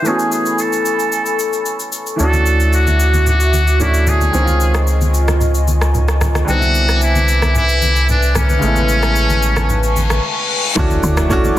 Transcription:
0.02 2.14 E3 medium
0.02 2.15 A3 medium
0.02 2.16 B3 medium
0.02 2.18 A4 medium
0.02 2.17 G#5 medium
0.02 2.17 B5 medium
0.02 6.44 C#6 medium
0.02 shaker medium
0.07 2.17 C#4 medium
0.07 0.14 F#4 medium
0.07 0.33 G#4 loud
0.16 2.21 G#5 medium
0.16 shaker soft
0.32 0.62 G#4 medium
0.32 shaker medium
0.46 shaker medium
0.59 1.93 A4 medium
0.59 shaker medium
0.73 shaker medium
0.86 shaker medium
1.00 shaker soft
1.12 shaker medium
1.26 shaker medium
1.39 shaker medium
1.53 shaker soft
1.66 shaker medium
1.80 shaker medium
1.93 shaker medium
2.07 shaker medium
2.16 4.30 D2 medium
2.16 3.75 E3 medium
2.16 3.76 A3 medium
2.16 3.77 C#4 medium
2.16 4.32 F#4 medium
2.16 4.32 E5 medium
2.16 4.32 D6 medium
2.16 shaker medium
2.21 3.78 D4 medium
2.21 3.79 F#4 medium
2.21 2.70 A4 loud
2.33 high conga medium
2.33 shaker soft
2.46 shaker medium
2.60 shaker soft
2.73 3.24 F#4 loud
2.73 shaker medium
2.87 high conga medium
2.87 shaker medium
3.00 shaker medium
3.14 high conga medium
3.14 shaker medium
3.27 3.77 F#4 loud
3.27 low conga medium
3.27 shaker medium
3.40 shaker medium
3.54 high conga medium
3.54 shaker medium
3.68 shaker medium
3.79 4.33 E3 soft
3.79 4.34 A3 soft
3.79 4.34 C#4 soft
3.79 4.35 D4 soft
3.79 4.10 E4 medium
3.79 low conga medium
3.79 shaker medium
3.83 4.35 F#4 medium
3.94 shaker medium
4.07 4.88 G#4 medium
4.07 high conga medium
4.07 low conga medium
4.07 shaker medium
4.21 high conga medium
4.21 shaker medium
4.30 6.44 C#2 medium
4.30 6.42 D#3 medium
4.30 6.43 G#3 medium
4.30 6.44 C4 medium
4.30 6.46 F4 medium
4.30 6.46 D#5 medium
4.30 8.58 G#5 medium
4.30 shaker medium
4.36 6.45 C#4 medium
4.36 4.43 D#4 medium
4.45 6.50 F4 medium
4.45 high conga medium
4.45 shaker soft
4.61 shaker medium
4.75 cross-stick medium
4.75 shaker soft
4.87 shaker medium
5.01 high conga medium
5.01 shaker medium
5.14 shaker medium
5.28 cross-stick medium
5.28 high conga medium
5.28 shaker medium
5.41 low conga medium
5.41 shaker medium
5.55 shaker medium
5.68 high conga medium
5.68 shaker medium
5.81 cross-stick medium
5.81 shaker soft
5.94 low conga medium
5.94 shaker medium
6.08 cross-stick medium
6.08 shaker medium
6.21 cross-stick medium
6.21 high conga medium
6.21 low conga medium
6.21 shaker medium
6.35 cross-stick medium
6.35 high conga medium
6.35 shaker medium
6.45 8.58 C2 medium
6.45 8.57 D3 medium
6.45 8.58 G3 medium
6.45 8.59 B3 medium
6.45 10.73 B4 medium
6.45 8.60 E5 medium
6.45 8.60 D6 medium
6.45 shaker medium
6.50 8.60 C4 medium
6.50 6.57 D#4 medium
6.50 6.99 F#4 loud
6.59 8.64 E4 medium
6.59 high conga medium
6.59 shaker soft
6.75 shaker medium
6.89 cross-stick medium
6.89 shaker medium
7.02 7.52 E4 medium
7.02 shaker medium
7.16 high conga medium
7.16 shaker medium
7.28 shaker medium
7.42 cross-stick medium
7.42 high conga medium
7.42 shaker medium
7.55 8.06 E4 loud
7.55 low conga medium
7.55 shaker medium
7.69 shaker medium
7.82 high conga medium
7.82 shaker medium
7.96 shaker medium
8.09 8.34 D4 medium
8.09 low conga medium
8.09 shaker medium
8.23 shaker medium
8.35 10.20 C#4 medium
8.35 cross-stick medium
8.35 high conga medium
8.35 low conga medium
8.35 shaker medium
8.49 high conga medium
8.49 shaker medium
8.59 10.20 A1 medium
8.59 10.71 C#3 medium
8.59 10.72 G#3 medium
8.59 10.73 A3 medium
8.59 10.75 G#5 medium
8.59 10.75 A5 medium
8.59 10.75 C#6 medium
8.59 shaker medium
8.65 10.74 B3 medium
8.65 10.75 E4 medium
8.76 high conga medium
8.76 shaker soft
8.89 shaker medium
9.03 cross-stick medium
9.03 shaker medium
9.16 shaker medium
9.30 high conga medium
9.30 shaker medium
9.43 shaker medium
9.57 cross-stick medium
9.57 high conga medium
9.57 shaker medium
9.70 reverse cymbal medium
9.70 low conga medium
9.70 shaker medium
9.83 shaker medium
9.96 high conga medium
9.96 shaker medium
10.10 cross-stick medium
10.10 high conga soft
10.10 shaker soft
10.75 11.00 D2 loud
10.75 11.19 E3 medium
10.75 11.20 A3 medium
10.75 11.20 C#4 medium
10.75 11.21 D4 medium
10.75 11.59 A4 medium
10.75 11.59 E5 medium
10.75 11.59 F#5 medium
10.75 11.59 D6 loud
10.75 kick loud
10.75 impact medium
10.75 low conga medium
10.75 shaker medium
10.79 11.21 F#4 loud
10.91 high conga medium
10.91 shaker medium
11.03 11.50 D2 loud
11.03 shaker medium
11.17 cross-stick loud
11.17 shaker medium
11.29 11.51 E3 medium
11.29 11.52 A3 medium
11.29 11.52 C#4 medium
11.29 11.53 D4 medium
11.29 11.53 F#4 loud
11.29 kick loud
11.29 shaker medium
11.44 high conga medium
11.44 shaker medium
11.55 11.59 E3 medium

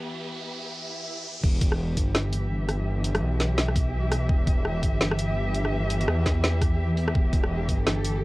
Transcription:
0.00 1.42 E3 medium
0.00 1.44 B3 medium
0.00 1.43 G4 medium
0.00 1.44 E5 medium
0.00 riser medium
0.72 swell medium
1.43 1.96 E1 loud
1.43 8.24 E3 medium
1.43 kick loud
1.43 crash loud
1.57 8.24 G4 medium
1.61 8.24 B3 medium
1.61 kick loud
1.61 closed hi-hat medium
1.72 cross-stick medium
1.97 2.50 G1 medium
1.97 kick medium
1.97 closed hi-hat medium
2.11 7.84 E5 medium
2.11 cross-stick medium
2.11 snare loud
2.33 closed hi-hat medium
2.51 3.21 G1 medium
2.69 cross-stick medium
2.69 closed hi-hat medium
3.04 closed hi-hat medium
3.15 cross-stick medium
3.15 closed hi-hat soft
3.22 4.28 B1 loud
3.40 snare medium
3.40 closed hi-hat medium
3.58 snare loud
3.69 cross-stick medium
3.76 kick loud
3.76 closed hi-hat medium
4.12 cross-stick medium
4.12 closed hi-hat medium
4.29 4.82 E1 loud
4.29 kick loud
4.47 kick loud
4.47 closed hi-hat medium
4.65 cross-stick medium
4.83 5.35 G1 loud
4.83 kick medium
4.83 closed hi-hat medium
5.01 snare loud
5.11 cross-stick medium
5.19 closed hi-hat medium
5.36 6.07 G1 loud
5.54 closed hi-hat medium
5.65 cross-stick soft
5.90 closed hi-hat medium
6.01 closed hi-hat soft
6.08 7.14 E2 loud
6.08 cross-stick medium
6.26 kick medium
6.26 snare medium
6.26 closed hi-hat medium
6.44 snare loud
6.61 kick loud
6.61 cross-stick soft
6.61 closed hi-hat medium
6.97 closed hi-hat medium
7.08 cross-stick medium
7.15 7.67 E1 loud
7.15 kick loud
7.33 kick loud
7.33 closed hi-hat medium
7.44 cross-stick medium
7.69 8.21 G1 loud
7.69 kick medium
7.69 closed hi-hat medium
7.83 8.24 A4 medium
7.83 cross-stick medium
7.83 snare loud
8.05 closed hi-hat medium

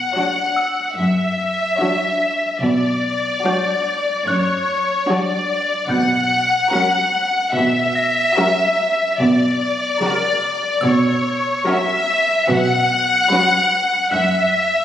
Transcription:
0.00 0.93 F#5 soft
0.16 0.78 F#3 soft
0.16 0.78 D4 soft
0.16 0.77 F#4 soft
0.16 0.78 C#5 soft
0.56 2.99 E6 soft
0.97 1.63 F#2 soft
0.97 2.62 E5 soft
1.78 2.42 F#3 soft
1.78 2.42 D4 soft
1.78 2.41 F#4 soft
1.78 2.41 C#5 soft
2.61 3.27 B1 soft
2.61 3.28 B2 soft
2.61 4.24 D5 medium
3.44 4.06 F#3 soft
3.44 4.06 D4 soft
3.44 4.06 F#4 soft
3.44 4.06 C#5 soft
3.44 5.87 G6 soft
4.26 4.92 F#2 soft
4.26 5.09 C#5 soft
4.26 6.70 F#6 soft
5.08 5.70 F#3 soft
5.08 5.70 D4 soft
5.08 5.71 F#4 soft
5.08 5.71 C#5 soft
5.08 5.91 D5 soft
5.89 6.56 B1 soft
5.89 6.57 B2 soft
5.89 7.52 F#5 medium
5.89 8.32 G6 soft
6.72 7.35 F#3 soft
6.72 7.35 C#4 soft
6.72 7.34 F#4 soft
6.72 7.34 A#4 soft
6.72 9.15 B6 soft
7.56 8.21 B2 soft
7.56 9.20 E5 medium
7.95 10.38 A#6 soft
8.37 8.99 F#3 soft
8.37 8.99 C#4 soft
8.37 8.99 F#4 soft
8.37 8.99 A#4 soft
9.18 9.84 B1 medium
9.18 9.86 B2 medium
9.18 10.80 D5 medium
10.01 10.63 C#3 soft
10.01 10.63 F#3 soft
10.01 10.64 F#4 soft
10.01 10.64 A#4 soft
10.81 11.49 B2 medium
10.81 11.66 C#5 medium
10.81 13.25 E6 soft
11.66 12.28 F#3 soft
11.66 12.28 C#4 soft
11.66 12.28 F#4 soft
11.66 12.28 A#4 soft
11.66 12.48 E5 medium
12.48 13.14 B1 medium
12.48 13.14 B2 medium
12.48 14.13 F#5 medium
13.31 13.93 F#3 soft
13.31 13.93 C#4 soft
13.31 13.93 F#4 medium
13.31 13.93 B4 medium
14.12 14.79 F#2 medium
14.12 14.85 E5 medium
14.12 14.85 F#5 soft
14.12 14.85 F#6 soft

